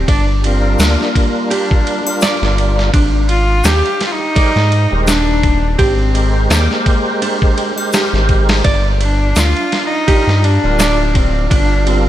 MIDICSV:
0, 0, Header, 1, 7, 480
1, 0, Start_track
1, 0, Tempo, 714286
1, 52, Time_signature, 4, 2, 24, 8
1, 8123, End_track
2, 0, Start_track
2, 0, Title_t, "Nylon-string guitar"
2, 0, Program_c, 0, 24
2, 53, Note_on_c, 0, 74, 93
2, 202, Note_off_c, 0, 74, 0
2, 532, Note_on_c, 0, 62, 79
2, 991, Note_off_c, 0, 62, 0
2, 1010, Note_on_c, 0, 67, 104
2, 1160, Note_off_c, 0, 67, 0
2, 1493, Note_on_c, 0, 74, 97
2, 1642, Note_off_c, 0, 74, 0
2, 1972, Note_on_c, 0, 62, 83
2, 2431, Note_off_c, 0, 62, 0
2, 2452, Note_on_c, 0, 67, 109
2, 2601, Note_off_c, 0, 67, 0
2, 2926, Note_on_c, 0, 74, 108
2, 3078, Note_off_c, 0, 74, 0
2, 3409, Note_on_c, 0, 62, 77
2, 3869, Note_off_c, 0, 62, 0
2, 3887, Note_on_c, 0, 67, 103
2, 4039, Note_off_c, 0, 67, 0
2, 4368, Note_on_c, 0, 74, 101
2, 4519, Note_off_c, 0, 74, 0
2, 4849, Note_on_c, 0, 62, 85
2, 5069, Note_off_c, 0, 62, 0
2, 5331, Note_on_c, 0, 67, 72
2, 5550, Note_off_c, 0, 67, 0
2, 5808, Note_on_c, 0, 74, 100
2, 5959, Note_off_c, 0, 74, 0
2, 6290, Note_on_c, 0, 62, 78
2, 6750, Note_off_c, 0, 62, 0
2, 6771, Note_on_c, 0, 67, 105
2, 6921, Note_off_c, 0, 67, 0
2, 7250, Note_on_c, 0, 74, 98
2, 7400, Note_off_c, 0, 74, 0
2, 7730, Note_on_c, 0, 62, 80
2, 8123, Note_off_c, 0, 62, 0
2, 8123, End_track
3, 0, Start_track
3, 0, Title_t, "Synth texture"
3, 0, Program_c, 1, 99
3, 5823, Note_on_c, 1, 65, 83
3, 8123, Note_off_c, 1, 65, 0
3, 8123, End_track
4, 0, Start_track
4, 0, Title_t, "Tonewheel organ"
4, 0, Program_c, 2, 16
4, 279, Note_on_c, 2, 55, 77
4, 289, Note_on_c, 2, 62, 71
4, 302, Note_on_c, 2, 65, 69
4, 311, Note_on_c, 2, 70, 80
4, 1348, Note_off_c, 2, 55, 0
4, 1353, Note_off_c, 2, 62, 0
4, 1359, Note_off_c, 2, 65, 0
4, 1364, Note_off_c, 2, 70, 0
4, 1369, Note_on_c, 2, 55, 78
4, 1380, Note_on_c, 2, 62, 77
4, 1391, Note_on_c, 2, 65, 76
4, 1400, Note_on_c, 2, 70, 82
4, 1950, Note_off_c, 2, 55, 0
4, 1956, Note_off_c, 2, 62, 0
4, 1961, Note_off_c, 2, 65, 0
4, 1966, Note_off_c, 2, 70, 0
4, 2927, Note_on_c, 2, 56, 92
4, 2931, Note_on_c, 2, 67, 78
4, 2935, Note_on_c, 2, 70, 81
4, 2943, Note_on_c, 2, 72, 97
4, 3039, Note_off_c, 2, 56, 0
4, 3041, Note_off_c, 2, 67, 0
4, 3043, Note_off_c, 2, 70, 0
4, 3047, Note_off_c, 2, 72, 0
4, 3297, Note_on_c, 2, 56, 88
4, 3304, Note_on_c, 2, 67, 81
4, 3308, Note_on_c, 2, 70, 86
4, 3314, Note_on_c, 2, 72, 101
4, 3447, Note_off_c, 2, 56, 0
4, 3451, Note_off_c, 2, 67, 0
4, 3453, Note_off_c, 2, 70, 0
4, 3456, Note_off_c, 2, 72, 0
4, 4117, Note_on_c, 2, 56, 72
4, 4126, Note_on_c, 2, 67, 70
4, 4138, Note_on_c, 2, 70, 69
4, 4149, Note_on_c, 2, 72, 89
4, 5187, Note_off_c, 2, 56, 0
4, 5191, Note_off_c, 2, 67, 0
4, 5197, Note_off_c, 2, 70, 0
4, 5203, Note_off_c, 2, 72, 0
4, 5215, Note_on_c, 2, 56, 82
4, 5224, Note_on_c, 2, 67, 73
4, 5236, Note_on_c, 2, 70, 68
4, 5246, Note_on_c, 2, 72, 88
4, 5793, Note_off_c, 2, 56, 0
4, 5798, Note_off_c, 2, 67, 0
4, 5804, Note_off_c, 2, 70, 0
4, 5809, Note_off_c, 2, 72, 0
4, 6771, Note_on_c, 2, 55, 80
4, 6779, Note_on_c, 2, 62, 77
4, 6784, Note_on_c, 2, 65, 75
4, 6789, Note_on_c, 2, 70, 94
4, 6881, Note_off_c, 2, 55, 0
4, 6884, Note_off_c, 2, 62, 0
4, 6887, Note_off_c, 2, 65, 0
4, 6889, Note_off_c, 2, 70, 0
4, 7149, Note_on_c, 2, 55, 88
4, 7151, Note_on_c, 2, 62, 78
4, 7155, Note_on_c, 2, 65, 81
4, 7161, Note_on_c, 2, 70, 93
4, 7293, Note_off_c, 2, 55, 0
4, 7294, Note_off_c, 2, 62, 0
4, 7296, Note_off_c, 2, 65, 0
4, 7299, Note_off_c, 2, 70, 0
4, 7965, Note_on_c, 2, 55, 77
4, 7975, Note_on_c, 2, 62, 69
4, 7985, Note_on_c, 2, 65, 77
4, 7995, Note_on_c, 2, 70, 92
4, 8123, Note_off_c, 2, 55, 0
4, 8123, Note_off_c, 2, 62, 0
4, 8123, Note_off_c, 2, 65, 0
4, 8123, Note_off_c, 2, 70, 0
4, 8123, End_track
5, 0, Start_track
5, 0, Title_t, "Cello"
5, 0, Program_c, 3, 42
5, 57, Note_on_c, 3, 62, 101
5, 164, Note_off_c, 3, 62, 0
5, 302, Note_on_c, 3, 60, 90
5, 543, Note_on_c, 3, 58, 85
5, 553, Note_off_c, 3, 60, 0
5, 1022, Note_on_c, 3, 62, 89
5, 1032, Note_off_c, 3, 58, 0
5, 1497, Note_off_c, 3, 62, 0
5, 2214, Note_on_c, 3, 65, 103
5, 2450, Note_on_c, 3, 67, 106
5, 2460, Note_off_c, 3, 65, 0
5, 2728, Note_off_c, 3, 67, 0
5, 2733, Note_on_c, 3, 65, 83
5, 2769, Note_on_c, 3, 63, 114
5, 2779, Note_off_c, 3, 65, 0
5, 3400, Note_off_c, 3, 63, 0
5, 3404, Note_on_c, 3, 62, 101
5, 3861, Note_off_c, 3, 62, 0
5, 3885, Note_on_c, 3, 60, 96
5, 4341, Note_off_c, 3, 60, 0
5, 4376, Note_on_c, 3, 58, 82
5, 4827, Note_off_c, 3, 58, 0
5, 6065, Note_on_c, 3, 62, 97
5, 6308, Note_on_c, 3, 65, 106
5, 6318, Note_off_c, 3, 62, 0
5, 6620, Note_off_c, 3, 65, 0
5, 6629, Note_on_c, 3, 63, 109
5, 7021, Note_on_c, 3, 62, 108
5, 7031, Note_off_c, 3, 63, 0
5, 7500, Note_on_c, 3, 60, 91
5, 7510, Note_off_c, 3, 62, 0
5, 7734, Note_off_c, 3, 60, 0
5, 7738, Note_on_c, 3, 62, 102
5, 7975, Note_on_c, 3, 60, 92
5, 7985, Note_off_c, 3, 62, 0
5, 8123, Note_off_c, 3, 60, 0
5, 8123, End_track
6, 0, Start_track
6, 0, Title_t, "Analog synth bass"
6, 0, Program_c, 4, 38
6, 53, Note_on_c, 4, 31, 102
6, 512, Note_off_c, 4, 31, 0
6, 530, Note_on_c, 4, 38, 101
6, 649, Note_off_c, 4, 38, 0
6, 1627, Note_on_c, 4, 31, 93
6, 1952, Note_off_c, 4, 31, 0
6, 1973, Note_on_c, 4, 32, 98
6, 2432, Note_off_c, 4, 32, 0
6, 2449, Note_on_c, 4, 39, 103
6, 2569, Note_off_c, 4, 39, 0
6, 3063, Note_on_c, 4, 44, 98
6, 3273, Note_off_c, 4, 44, 0
6, 3306, Note_on_c, 4, 27, 101
6, 3871, Note_off_c, 4, 27, 0
6, 3893, Note_on_c, 4, 32, 103
6, 4352, Note_off_c, 4, 32, 0
6, 4370, Note_on_c, 4, 39, 111
6, 4490, Note_off_c, 4, 39, 0
6, 5465, Note_on_c, 4, 32, 99
6, 5791, Note_off_c, 4, 32, 0
6, 5812, Note_on_c, 4, 31, 108
6, 6272, Note_off_c, 4, 31, 0
6, 6291, Note_on_c, 4, 38, 103
6, 6410, Note_off_c, 4, 38, 0
6, 6903, Note_on_c, 4, 43, 102
6, 7112, Note_off_c, 4, 43, 0
6, 7149, Note_on_c, 4, 26, 110
6, 7713, Note_off_c, 4, 26, 0
6, 7734, Note_on_c, 4, 31, 107
6, 8123, Note_off_c, 4, 31, 0
6, 8123, End_track
7, 0, Start_track
7, 0, Title_t, "Drums"
7, 54, Note_on_c, 9, 36, 104
7, 56, Note_on_c, 9, 51, 84
7, 122, Note_off_c, 9, 36, 0
7, 123, Note_off_c, 9, 51, 0
7, 296, Note_on_c, 9, 51, 67
7, 363, Note_off_c, 9, 51, 0
7, 532, Note_on_c, 9, 82, 75
7, 536, Note_on_c, 9, 46, 74
7, 539, Note_on_c, 9, 38, 115
7, 599, Note_off_c, 9, 82, 0
7, 603, Note_off_c, 9, 46, 0
7, 606, Note_off_c, 9, 38, 0
7, 678, Note_on_c, 9, 38, 38
7, 745, Note_off_c, 9, 38, 0
7, 776, Note_on_c, 9, 36, 91
7, 779, Note_on_c, 9, 51, 68
7, 843, Note_off_c, 9, 36, 0
7, 846, Note_off_c, 9, 51, 0
7, 1016, Note_on_c, 9, 51, 90
7, 1083, Note_off_c, 9, 51, 0
7, 1150, Note_on_c, 9, 36, 100
7, 1217, Note_off_c, 9, 36, 0
7, 1256, Note_on_c, 9, 51, 65
7, 1323, Note_off_c, 9, 51, 0
7, 1389, Note_on_c, 9, 81, 83
7, 1456, Note_off_c, 9, 81, 0
7, 1487, Note_on_c, 9, 82, 78
7, 1494, Note_on_c, 9, 51, 89
7, 1497, Note_on_c, 9, 38, 118
7, 1554, Note_off_c, 9, 82, 0
7, 1561, Note_off_c, 9, 51, 0
7, 1564, Note_off_c, 9, 38, 0
7, 1633, Note_on_c, 9, 38, 55
7, 1700, Note_off_c, 9, 38, 0
7, 1736, Note_on_c, 9, 51, 61
7, 1803, Note_off_c, 9, 51, 0
7, 1875, Note_on_c, 9, 38, 47
7, 1943, Note_off_c, 9, 38, 0
7, 1973, Note_on_c, 9, 36, 106
7, 1974, Note_on_c, 9, 51, 81
7, 2040, Note_off_c, 9, 36, 0
7, 2041, Note_off_c, 9, 51, 0
7, 2210, Note_on_c, 9, 51, 69
7, 2278, Note_off_c, 9, 51, 0
7, 2446, Note_on_c, 9, 82, 81
7, 2452, Note_on_c, 9, 51, 86
7, 2456, Note_on_c, 9, 38, 116
7, 2513, Note_off_c, 9, 82, 0
7, 2520, Note_off_c, 9, 51, 0
7, 2523, Note_off_c, 9, 38, 0
7, 2591, Note_on_c, 9, 51, 41
7, 2658, Note_off_c, 9, 51, 0
7, 2691, Note_on_c, 9, 51, 66
7, 2695, Note_on_c, 9, 38, 55
7, 2759, Note_off_c, 9, 51, 0
7, 2762, Note_off_c, 9, 38, 0
7, 2931, Note_on_c, 9, 36, 110
7, 2931, Note_on_c, 9, 51, 91
7, 2998, Note_off_c, 9, 51, 0
7, 2999, Note_off_c, 9, 36, 0
7, 3070, Note_on_c, 9, 38, 47
7, 3137, Note_off_c, 9, 38, 0
7, 3171, Note_on_c, 9, 51, 63
7, 3238, Note_off_c, 9, 51, 0
7, 3410, Note_on_c, 9, 51, 89
7, 3410, Note_on_c, 9, 82, 88
7, 3413, Note_on_c, 9, 38, 125
7, 3477, Note_off_c, 9, 51, 0
7, 3477, Note_off_c, 9, 82, 0
7, 3481, Note_off_c, 9, 38, 0
7, 3652, Note_on_c, 9, 36, 89
7, 3652, Note_on_c, 9, 51, 61
7, 3719, Note_off_c, 9, 36, 0
7, 3719, Note_off_c, 9, 51, 0
7, 3890, Note_on_c, 9, 51, 81
7, 3891, Note_on_c, 9, 36, 102
7, 3958, Note_off_c, 9, 36, 0
7, 3958, Note_off_c, 9, 51, 0
7, 4132, Note_on_c, 9, 51, 72
7, 4199, Note_off_c, 9, 51, 0
7, 4371, Note_on_c, 9, 46, 84
7, 4374, Note_on_c, 9, 38, 118
7, 4374, Note_on_c, 9, 82, 69
7, 4438, Note_off_c, 9, 46, 0
7, 4442, Note_off_c, 9, 38, 0
7, 4442, Note_off_c, 9, 82, 0
7, 4509, Note_on_c, 9, 38, 40
7, 4576, Note_off_c, 9, 38, 0
7, 4611, Note_on_c, 9, 36, 91
7, 4611, Note_on_c, 9, 51, 65
7, 4678, Note_off_c, 9, 36, 0
7, 4678, Note_off_c, 9, 51, 0
7, 4852, Note_on_c, 9, 51, 92
7, 4919, Note_off_c, 9, 51, 0
7, 4986, Note_on_c, 9, 36, 100
7, 5053, Note_off_c, 9, 36, 0
7, 5091, Note_on_c, 9, 51, 65
7, 5159, Note_off_c, 9, 51, 0
7, 5226, Note_on_c, 9, 81, 73
7, 5293, Note_off_c, 9, 81, 0
7, 5327, Note_on_c, 9, 82, 86
7, 5333, Note_on_c, 9, 46, 72
7, 5337, Note_on_c, 9, 38, 106
7, 5394, Note_off_c, 9, 82, 0
7, 5401, Note_off_c, 9, 46, 0
7, 5404, Note_off_c, 9, 38, 0
7, 5471, Note_on_c, 9, 38, 37
7, 5538, Note_off_c, 9, 38, 0
7, 5570, Note_on_c, 9, 51, 57
7, 5571, Note_on_c, 9, 36, 83
7, 5637, Note_off_c, 9, 51, 0
7, 5638, Note_off_c, 9, 36, 0
7, 5705, Note_on_c, 9, 46, 78
7, 5708, Note_on_c, 9, 38, 109
7, 5772, Note_off_c, 9, 46, 0
7, 5775, Note_off_c, 9, 38, 0
7, 5809, Note_on_c, 9, 51, 83
7, 5811, Note_on_c, 9, 36, 109
7, 5877, Note_off_c, 9, 51, 0
7, 5878, Note_off_c, 9, 36, 0
7, 6052, Note_on_c, 9, 51, 72
7, 6119, Note_off_c, 9, 51, 0
7, 6289, Note_on_c, 9, 82, 82
7, 6290, Note_on_c, 9, 51, 84
7, 6293, Note_on_c, 9, 38, 115
7, 6356, Note_off_c, 9, 82, 0
7, 6357, Note_off_c, 9, 51, 0
7, 6360, Note_off_c, 9, 38, 0
7, 6428, Note_on_c, 9, 51, 42
7, 6495, Note_off_c, 9, 51, 0
7, 6534, Note_on_c, 9, 51, 67
7, 6537, Note_on_c, 9, 38, 58
7, 6601, Note_off_c, 9, 51, 0
7, 6604, Note_off_c, 9, 38, 0
7, 6773, Note_on_c, 9, 36, 112
7, 6773, Note_on_c, 9, 51, 86
7, 6840, Note_off_c, 9, 36, 0
7, 6840, Note_off_c, 9, 51, 0
7, 6916, Note_on_c, 9, 38, 43
7, 6983, Note_off_c, 9, 38, 0
7, 7016, Note_on_c, 9, 51, 65
7, 7083, Note_off_c, 9, 51, 0
7, 7253, Note_on_c, 9, 82, 90
7, 7255, Note_on_c, 9, 51, 87
7, 7258, Note_on_c, 9, 38, 115
7, 7320, Note_off_c, 9, 82, 0
7, 7322, Note_off_c, 9, 51, 0
7, 7325, Note_off_c, 9, 38, 0
7, 7493, Note_on_c, 9, 51, 68
7, 7494, Note_on_c, 9, 36, 88
7, 7561, Note_off_c, 9, 36, 0
7, 7561, Note_off_c, 9, 51, 0
7, 7735, Note_on_c, 9, 36, 108
7, 7736, Note_on_c, 9, 51, 88
7, 7802, Note_off_c, 9, 36, 0
7, 7803, Note_off_c, 9, 51, 0
7, 7975, Note_on_c, 9, 51, 71
7, 8042, Note_off_c, 9, 51, 0
7, 8123, End_track
0, 0, End_of_file